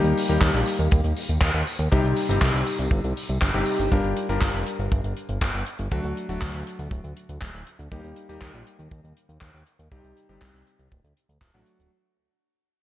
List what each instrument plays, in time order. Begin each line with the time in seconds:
Already playing: electric grand piano G3 A#3 D#4 G4
0.04 analog synth bass D#2, closed hi-hat, tambourine
0.18 open hi-hat, tambourine
0.29 analog synth bass D#2, electric grand piano G3 A#3 D#4 G4, closed hi-hat
0.41 analog synth bass D#2, kick, clap, closed hi-hat
0.54 analog synth bass A#1, closed hi-hat, tambourine
0.66 open hi-hat, tambourine
0.79 analog synth bass D#2, closed hi-hat, tambourine
0.91 analog synth bass D#2, kick, closed hi-hat, tambourine
1.04 analog synth bass D#2, closed hi-hat, tambourine
1.17 open hi-hat, tambourine
1.29 analog synth bass D#2, closed hi-hat, tambourine
1.41 analog synth bass D#2, kick, clap, closed hi-hat
1.54 analog synth bass D#2, closed hi-hat, tambourine
1.67 open hi-hat, tambourine
1.79 analog synth bass D#2, closed hi-hat, tambourine
1.92 analog synth bass C2, electric grand piano C3 G3 C4 D#4 G4, kick, closed hi-hat, tambourine
2.04 analog synth bass C2, closed hi-hat, tambourine
2.16 open hi-hat, tambourine
2.29 analog synth bass G1, electric grand piano C3 G3 C4 D#4 G4, closed hi-hat, tambourine
2.41 analog synth bass C2, kick, clap, closed hi-hat
2.54 analog synth bass C2, closed hi-hat, tambourine
2.66 open hi-hat, tambourine
2.79 analog synth bass C2, closed hi-hat, tambourine
2.91 analog synth bass G1, kick, closed hi-hat
3.04 analog synth bass C2, closed hi-hat, tambourine
3.17 open hi-hat, tambourine
3.29 analog synth bass C2, closed hi-hat, tambourine
3.42 analog synth bass G1, kick, clap, closed hi-hat, tambourine
3.54 analog synth bass G1, electric grand piano C3 G3 C4 D#4 G4, closed hi-hat, tambourine
3.66 open hi-hat, tambourine
3.79 analog synth bass G1, closed hi-hat, tambourine
3.92 analog synth bass G1, electric grand piano G3 D4 F4 G4 A#4, kick, closed hi-hat
4.04 analog synth bass G1, closed hi-hat
4.17 closed hi-hat
4.29 analog synth bass G1, electric grand piano G3 D4 F4 G4 A#4, closed hi-hat
4.41 analog synth bass G1, kick, clap, closed hi-hat
4.54 analog synth bass F1, closed hi-hat
4.67 closed hi-hat
4.79 analog synth bass G1, closed hi-hat
4.92 analog synth bass G1, kick, closed hi-hat
5.04 analog synth bass G1, closed hi-hat
5.17 closed hi-hat
5.29 analog synth bass G1, closed hi-hat
5.41 analog synth bass G1, kick, clap, closed hi-hat
5.54 analog synth bass G1, closed hi-hat
5.66 closed hi-hat
5.79 analog synth bass G1, closed hi-hat
5.91 analog synth bass D2, electric grand piano F#3 A3 D4 F#4, kick, closed hi-hat
6.04 analog synth bass D2, closed hi-hat
6.17 closed hi-hat
6.29 analog synth bass D1, electric grand piano F#3 A3 D4 F#4, closed hi-hat
6.41 analog synth bass D2, kick, clap, closed hi-hat
6.54 analog synth bass D2, closed hi-hat
6.67 closed hi-hat
6.79 analog synth bass D2, closed hi-hat
6.91 analog synth bass D1, kick, closed hi-hat
7.04 analog synth bass D2, closed hi-hat
7.17 closed hi-hat
7.29 analog synth bass D2, closed hi-hat
7.41 analog synth bass D1, kick, clap, closed hi-hat
7.54 analog synth bass D1, closed hi-hat
7.67 closed hi-hat
7.79 analog synth bass D2, closed hi-hat
7.92 analog synth bass D#2, electric grand piano G3 A#3 D#4 G4, kick, closed hi-hat
8.04 analog synth bass D#2, closed hi-hat
8.16 closed hi-hat
8.29 analog synth bass D#2, electric grand piano G3 A#3 D#4 G4, closed hi-hat
8.41 analog synth bass D#2, kick, clap, closed hi-hat
8.54 analog synth bass A#1, closed hi-hat
8.67 closed hi-hat
8.79 analog synth bass D#2, closed hi-hat
8.91 analog synth bass D#2, kick, closed hi-hat
9.04 analog synth bass D#2, closed hi-hat
9.17 closed hi-hat
9.29 analog synth bass D#2, closed hi-hat
9.41 analog synth bass D#2, kick, clap, closed hi-hat
9.54 analog synth bass D#2, closed hi-hat
9.67 closed hi-hat
9.79 analog synth bass D#2, closed hi-hat
9.92 analog synth bass C2, electric grand piano C3 G3 C4 D#4 G4, kick, closed hi-hat
10.04 analog synth bass C2, closed hi-hat
10.17 closed hi-hat
10.29 analog synth bass G1, electric grand piano C3 G3 C4 D#4 G4, closed hi-hat
10.41 analog synth bass C2, kick, clap, closed hi-hat
10.54 analog synth bass C2, closed hi-hat
10.67 closed hi-hat
10.79 analog synth bass C2, closed hi-hat
10.92 analog synth bass D1, kick, closed hi-hat
11.04 analog synth bass D2, closed hi-hat
11.17 closed hi-hat
11.29 analog synth bass D2, closed hi-hat
11.41 analog synth bass D1, kick, clap, closed hi-hat
11.54 analog synth bass A1, electric grand piano F#3 A3 D4 F#4, closed hi-hat
11.66 closed hi-hat
11.79 analog synth bass D1, closed hi-hat